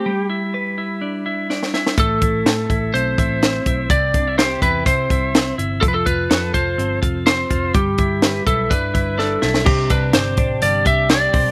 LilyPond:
<<
  \new Staff \with { instrumentName = "Lead electric guitar" } { \time 4/4 \key c \major \tempo 4 = 125 g'8 r2. r8 | a'2 c''2 | d''4 c''8 b'8 c''4. r8 | a'32 b'32 a'16 b'4 c''4 r8 c''4 |
g'4. a'8 b'4 a'4 | g'8 b'8 c''4 d''8 e''8 d''4 | }
  \new Staff \with { instrumentName = "Clean electric guitar" } { \time 4/4 \key c \major g8 e'8 b'8 e'8 d'8 e'8 d'8 e'8 | a8 e'8 a'8 e'8 c'8 e'8 c'8 e'8 | c8 d'16 e'16 g'8 e'8 c'8 e'8 c'8 e'8 | f8 f'8 a'8 f'8 c'8 f'8 c'8 f'8 |
g8 e'8 b'8 e'8 d'8 e'8 d'8 e'8 | c8 d'8 g'8 d'8 g8 g'8 d'8 c'8 | }
  \new Staff \with { instrumentName = "Picked electric bass" } { \clef bass \time 4/4 \key c \major r1 | a,,8 a,,8 a,8 a,,8 b,,8 a,,4 b,,8 | c,8 c,4 e,8 c8 c,4 g,,8 | f,,8 f,,8 f,8 f,,8 g,,8 f,,4 f,,8 |
g,,8 g,,4 b,,8 g,8 g,,4 b,,8 | c,8 c,8 g,,8 a,,8 g,,8 c,4 b,,8 | }
  \new DrumStaff \with { instrumentName = "Drums" } \drummode { \time 4/4 r4 r4 r4 sn16 sn16 sn16 sn16 | <hh bd>8 <hh bd>8 <hh sn>8 <hh bd>8 hh8 <hh bd>8 <hh sn>8 <hh bd>8 | <hh bd>8 <hh bd>8 <hh sn>8 <hh bd>8 <hh bd>8 <hh bd>8 <hh sn>8 hh8 | <hh bd>8 <hh bd>8 <hh sn>8 <hh bd>8 hh8 <hh bd>8 <hh sn>8 <hh bd>8 |
<hh bd>8 <hh bd>8 <hh sn>8 <hh bd>8 <hh bd>8 <hh bd>8 sn8 sn16 sn16 | <cymc bd>8 <hh bd>8 <hh sn>8 <hh bd>8 hh8 <hh bd>8 <hh sn>8 <hho bd>8 | }
>>